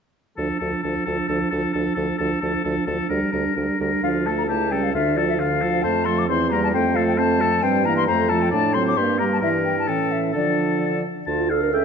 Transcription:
0.37 D2 F3 D4 A4
0.59 D2 F3 D4 A4
0.83 D2 F3 D4 A4
1.05 D2 F3 D4 A4
1.28 D2 F3 D4 A4
1.50 D2 F3 D4 A4
1.73 D2 F3 D4 A4
1.95 D2 F3 D4 A4
2.18 D2 F3 D4 A4
2.41 D2 F3 D4 A4
2.64 D2 F3 D4 A4
2.86 D2 F3 D4 A4
3.09 D2 G3 D4 A#4
3.32 D2 G3 D4 A#4
3.56 D2 G3 D4 A#4
3.79 D2 G3 D4 A#4
4.03 D2 F3 D4 F4 F5
4.26 A3 F4 A4 A5
4.38 A#5
4.48 C#2 A3 E4 G4 A5
4.71 G3 C#4 A4 G5
4.83 F5
4.94 D2 D3 D4 F4 E5
5.16 F3 F4 A4 D5
5.29 E5
5.39 D3 D4 F4 F5
5.61 F3 F4 A4
5.83 F2 A3 C4 C5 A5
6.05 F3 A3 A4 C6
6.19 D6
6.28 E2 E3 C4 C5 C6
6.51 G3 A#3 A#4 A#5
6.64 A5
6.73 F2 A3 C4 C5 G5
6.95 F3 A3 A4 F5
7.08 G5
7.17 A3 C4 C5 A5
7.40 F3 A3 A4
7.63 G2 G3 C4 C5 G5
7.85 E3 A#3 A#4 A#5
7.97 C6
8.07 F2 A3 C4 C5 A#5
8.29 F3 A3 A4 A5
8.42 G5
8.51 A2 A3 D4 D5 A5
8.73 F#3 C4 C5 C6
8.87 D6
8.96 G2 A#3 D4 G4 C6
9.19 G3 A#3 A#4 A#5
9.33 A5
9.41 G2 E3 E4 A#4 E5
9.65 G5
9.79 A5
9.87 A2 E3 C#4 A4 G5
10.12 E5
10.33 D3 F3 D4 A4 D5
11.27 D2 F4 A5
11.50 D4 A4 F5
11.63 A#4
11.73 C#2 C#4 A4 E5 G5

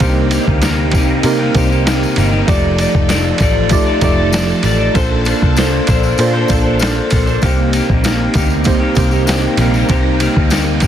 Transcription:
Already playing: C3 G3 A#3 D#4 C5
0.00 C2 C3 A#3 C4 D4 D#4 G4 C5, kick, ride, tambourine
0.07 D#4
0.31 C3 A#3 D#4 G4, ride, tambourine
0.48 D2, kick
0.62 C3 A#3 D#4 G4, snare, ride, tambourine
0.91 C2 C3 A#3 D#4, kick, ride, tambourine
0.96 G4
1.23 C3 A#3 C4 D#4 G4 A#4, ride, tambourine
1.39 A#3 D#4 G4
1.54 C2 C3 A#3 C4 D#4 G4 C5, kick, ride, tambourine
1.69 A#3 D#4 G4, tambourine
1.85 C3 A#3 D#4 G4, snare, ride, tambourine
2.03 tambourine
2.15 G1 C3 A#3 D#4 G4, ride, tambourine
2.31 A#3 D#4 G4
2.46 F1 F3 A3 D#4 F4 G4 A4 D5, kick, ride, tambourine
2.78 F3 D#4 A4 D5, ride, tambourine
2.95 F1, kick
3.08 F3 D#4 A4 D5, snare, ride, tambourine
3.38 A1 F3 D#4, kick, ride, tambourine
3.42 A4 D5
3.69 A3 D#4 F4 G4 D5, kick, ride, tambourine
3.86 D#4 A4 D5
4.01 F1 F3 A3 D#4 F4 G4 A4 D5, kick, ride, tambourine
4.17 D#4 A4 D5
4.32 F3 D#4 A4 D5, snare, ride, tambourine
4.49 tambourine
4.63 A1 F3 D#4 A4 D5, ride, tambourine
4.78 D#4 A4 D5
4.94 A#1 A#3 D4 F4 A4 C5, kick, ride, tambourine
5.25 A#3 D4 A4 C5, ride, tambourine
5.42 C2, kick
5.56 A#3 D4 A4 C5, snare, ride, tambourine
5.87 A#1 A#3 D4 A4 C5, kick, ride, tambourine
6.03 tambourine
6.18 A#2 A#3 D4 F4 A4 C5, ride, tambourine
6.34 D4 A4 C5
6.48 A#1 A#3 D4 F4 A4 C5, kick, ride, tambourine
6.52 C5
6.64 D4 A4 C5
6.79 A#3 D4 A4 C5, snare, ride, tambourine
7.10 A#1 A#3 D4 A4, kick, open hi-hat, ride, tambourine
7.14 C5
7.26 D4 A4 C5, tambourine
7.42 C2 C3 G3 A#3 C4 D#4 G4 C5, kick, ride, tambourine
7.72 C3 A#3 D#4 G4, ride, tambourine
7.90 A#1, kick
8.04 C3 A#3 D#4 G4, snare, ride, tambourine
8.34 D2 C3 A#3 D#4 G4, kick, ride, tambourine
8.50 tambourine
8.64 A#3 C4 D#4 G4 C5, kick, ride, tambourine
8.80 A#3 D#4 G4
8.95 C2 C3 A#3 C4 D#4 G4 C5, kick, ride, tambourine
9.11 A#3 D#4 G4, tambourine
9.26 C3 A#3 D#4 G4, snare, ride, tambourine
9.57 A#1 C3 A#3 D#4 G4, ride, tambourine
9.73 A#3 D#4 G4, tambourine
9.88 C2 C3 A#3 C4 D#4 G4 C5, kick, ride, tambourine
10.19 C3 A#3 D#4 G4, ride, tambourine
10.37 D2, kick
10.50 C3 A#3 D#4 G4, snare, ride, tambourine
10.80 C2 C3 A#3 D#4, kick, ride, tambourine

